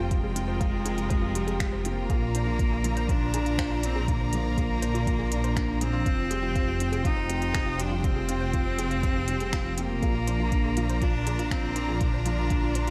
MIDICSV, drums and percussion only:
0, 0, Header, 1, 2, 480
1, 0, Start_track
1, 0, Tempo, 495868
1, 106, Time_signature, 4, 2, 24, 8
1, 12490, End_track
2, 0, Start_track
2, 0, Title_t, "Drums"
2, 107, Note_on_c, 9, 36, 106
2, 108, Note_on_c, 9, 42, 43
2, 204, Note_off_c, 9, 36, 0
2, 205, Note_off_c, 9, 42, 0
2, 350, Note_on_c, 9, 42, 63
2, 446, Note_off_c, 9, 42, 0
2, 589, Note_on_c, 9, 36, 104
2, 589, Note_on_c, 9, 42, 42
2, 686, Note_off_c, 9, 36, 0
2, 686, Note_off_c, 9, 42, 0
2, 829, Note_on_c, 9, 42, 66
2, 926, Note_off_c, 9, 42, 0
2, 948, Note_on_c, 9, 42, 31
2, 1045, Note_off_c, 9, 42, 0
2, 1069, Note_on_c, 9, 36, 110
2, 1070, Note_on_c, 9, 42, 45
2, 1166, Note_off_c, 9, 36, 0
2, 1166, Note_off_c, 9, 42, 0
2, 1310, Note_on_c, 9, 42, 68
2, 1407, Note_off_c, 9, 42, 0
2, 1431, Note_on_c, 9, 42, 30
2, 1527, Note_off_c, 9, 42, 0
2, 1549, Note_on_c, 9, 36, 111
2, 1551, Note_on_c, 9, 26, 82
2, 1551, Note_on_c, 9, 42, 42
2, 1646, Note_off_c, 9, 36, 0
2, 1648, Note_off_c, 9, 26, 0
2, 1648, Note_off_c, 9, 42, 0
2, 1791, Note_on_c, 9, 42, 64
2, 1888, Note_off_c, 9, 42, 0
2, 2029, Note_on_c, 9, 36, 107
2, 2031, Note_on_c, 9, 42, 42
2, 2126, Note_off_c, 9, 36, 0
2, 2128, Note_off_c, 9, 42, 0
2, 2273, Note_on_c, 9, 42, 68
2, 2370, Note_off_c, 9, 42, 0
2, 2509, Note_on_c, 9, 36, 106
2, 2511, Note_on_c, 9, 42, 41
2, 2606, Note_off_c, 9, 36, 0
2, 2608, Note_off_c, 9, 42, 0
2, 2753, Note_on_c, 9, 42, 65
2, 2849, Note_off_c, 9, 42, 0
2, 2873, Note_on_c, 9, 42, 30
2, 2970, Note_off_c, 9, 42, 0
2, 2988, Note_on_c, 9, 36, 109
2, 2994, Note_on_c, 9, 42, 44
2, 3085, Note_off_c, 9, 36, 0
2, 3090, Note_off_c, 9, 42, 0
2, 3231, Note_on_c, 9, 42, 65
2, 3328, Note_off_c, 9, 42, 0
2, 3352, Note_on_c, 9, 42, 31
2, 3448, Note_off_c, 9, 42, 0
2, 3468, Note_on_c, 9, 36, 107
2, 3473, Note_on_c, 9, 26, 73
2, 3473, Note_on_c, 9, 42, 46
2, 3565, Note_off_c, 9, 36, 0
2, 3570, Note_off_c, 9, 26, 0
2, 3570, Note_off_c, 9, 42, 0
2, 3712, Note_on_c, 9, 42, 69
2, 3808, Note_off_c, 9, 42, 0
2, 3948, Note_on_c, 9, 36, 108
2, 3952, Note_on_c, 9, 42, 45
2, 4044, Note_off_c, 9, 36, 0
2, 4049, Note_off_c, 9, 42, 0
2, 4189, Note_on_c, 9, 42, 63
2, 4286, Note_off_c, 9, 42, 0
2, 4427, Note_on_c, 9, 36, 97
2, 4432, Note_on_c, 9, 42, 42
2, 4524, Note_off_c, 9, 36, 0
2, 4528, Note_off_c, 9, 42, 0
2, 4671, Note_on_c, 9, 42, 59
2, 4767, Note_off_c, 9, 42, 0
2, 4794, Note_on_c, 9, 42, 30
2, 4890, Note_off_c, 9, 42, 0
2, 4906, Note_on_c, 9, 36, 103
2, 4911, Note_on_c, 9, 42, 45
2, 5002, Note_off_c, 9, 36, 0
2, 5008, Note_off_c, 9, 42, 0
2, 5147, Note_on_c, 9, 42, 66
2, 5244, Note_off_c, 9, 42, 0
2, 5267, Note_on_c, 9, 42, 30
2, 5364, Note_off_c, 9, 42, 0
2, 5386, Note_on_c, 9, 36, 101
2, 5388, Note_on_c, 9, 26, 72
2, 5388, Note_on_c, 9, 42, 45
2, 5483, Note_off_c, 9, 36, 0
2, 5485, Note_off_c, 9, 26, 0
2, 5485, Note_off_c, 9, 42, 0
2, 5627, Note_on_c, 9, 42, 67
2, 5724, Note_off_c, 9, 42, 0
2, 5865, Note_on_c, 9, 36, 112
2, 5868, Note_on_c, 9, 42, 41
2, 5962, Note_off_c, 9, 36, 0
2, 5965, Note_off_c, 9, 42, 0
2, 6107, Note_on_c, 9, 42, 61
2, 6204, Note_off_c, 9, 42, 0
2, 6344, Note_on_c, 9, 36, 100
2, 6346, Note_on_c, 9, 42, 39
2, 6441, Note_off_c, 9, 36, 0
2, 6443, Note_off_c, 9, 42, 0
2, 6586, Note_on_c, 9, 42, 61
2, 6682, Note_off_c, 9, 42, 0
2, 6706, Note_on_c, 9, 42, 29
2, 6803, Note_off_c, 9, 42, 0
2, 6822, Note_on_c, 9, 36, 104
2, 6825, Note_on_c, 9, 42, 42
2, 6919, Note_off_c, 9, 36, 0
2, 6922, Note_off_c, 9, 42, 0
2, 7062, Note_on_c, 9, 42, 63
2, 7159, Note_off_c, 9, 42, 0
2, 7183, Note_on_c, 9, 42, 29
2, 7279, Note_off_c, 9, 42, 0
2, 7303, Note_on_c, 9, 36, 102
2, 7304, Note_on_c, 9, 26, 70
2, 7304, Note_on_c, 9, 42, 43
2, 7399, Note_off_c, 9, 36, 0
2, 7401, Note_off_c, 9, 26, 0
2, 7401, Note_off_c, 9, 42, 0
2, 7546, Note_on_c, 9, 42, 63
2, 7643, Note_off_c, 9, 42, 0
2, 7783, Note_on_c, 9, 36, 107
2, 7784, Note_on_c, 9, 42, 41
2, 7879, Note_off_c, 9, 36, 0
2, 7881, Note_off_c, 9, 42, 0
2, 8022, Note_on_c, 9, 42, 60
2, 8119, Note_off_c, 9, 42, 0
2, 8262, Note_on_c, 9, 36, 96
2, 8262, Note_on_c, 9, 42, 39
2, 8359, Note_off_c, 9, 36, 0
2, 8359, Note_off_c, 9, 42, 0
2, 8505, Note_on_c, 9, 42, 62
2, 8601, Note_off_c, 9, 42, 0
2, 8626, Note_on_c, 9, 42, 28
2, 8723, Note_off_c, 9, 42, 0
2, 8743, Note_on_c, 9, 36, 104
2, 8745, Note_on_c, 9, 42, 42
2, 8839, Note_off_c, 9, 36, 0
2, 8842, Note_off_c, 9, 42, 0
2, 8981, Note_on_c, 9, 42, 56
2, 9078, Note_off_c, 9, 42, 0
2, 9103, Note_on_c, 9, 42, 30
2, 9200, Note_off_c, 9, 42, 0
2, 9223, Note_on_c, 9, 36, 97
2, 9224, Note_on_c, 9, 26, 70
2, 9224, Note_on_c, 9, 42, 42
2, 9320, Note_off_c, 9, 36, 0
2, 9321, Note_off_c, 9, 26, 0
2, 9321, Note_off_c, 9, 42, 0
2, 9464, Note_on_c, 9, 42, 66
2, 9560, Note_off_c, 9, 42, 0
2, 9703, Note_on_c, 9, 36, 99
2, 9705, Note_on_c, 9, 42, 38
2, 9800, Note_off_c, 9, 36, 0
2, 9802, Note_off_c, 9, 42, 0
2, 9946, Note_on_c, 9, 42, 54
2, 10043, Note_off_c, 9, 42, 0
2, 10183, Note_on_c, 9, 36, 95
2, 10183, Note_on_c, 9, 42, 38
2, 10280, Note_off_c, 9, 36, 0
2, 10280, Note_off_c, 9, 42, 0
2, 10424, Note_on_c, 9, 42, 58
2, 10521, Note_off_c, 9, 42, 0
2, 10547, Note_on_c, 9, 42, 30
2, 10644, Note_off_c, 9, 42, 0
2, 10663, Note_on_c, 9, 36, 97
2, 10664, Note_on_c, 9, 42, 41
2, 10760, Note_off_c, 9, 36, 0
2, 10761, Note_off_c, 9, 42, 0
2, 10907, Note_on_c, 9, 42, 61
2, 11004, Note_off_c, 9, 42, 0
2, 11027, Note_on_c, 9, 42, 29
2, 11124, Note_off_c, 9, 42, 0
2, 11143, Note_on_c, 9, 36, 107
2, 11146, Note_on_c, 9, 26, 78
2, 11146, Note_on_c, 9, 42, 40
2, 11240, Note_off_c, 9, 36, 0
2, 11243, Note_off_c, 9, 26, 0
2, 11243, Note_off_c, 9, 42, 0
2, 11383, Note_on_c, 9, 42, 60
2, 11479, Note_off_c, 9, 42, 0
2, 11623, Note_on_c, 9, 42, 41
2, 11624, Note_on_c, 9, 36, 103
2, 11720, Note_off_c, 9, 42, 0
2, 11721, Note_off_c, 9, 36, 0
2, 11864, Note_on_c, 9, 42, 64
2, 11961, Note_off_c, 9, 42, 0
2, 12103, Note_on_c, 9, 42, 38
2, 12104, Note_on_c, 9, 36, 93
2, 12200, Note_off_c, 9, 42, 0
2, 12201, Note_off_c, 9, 36, 0
2, 12344, Note_on_c, 9, 42, 65
2, 12441, Note_off_c, 9, 42, 0
2, 12490, End_track
0, 0, End_of_file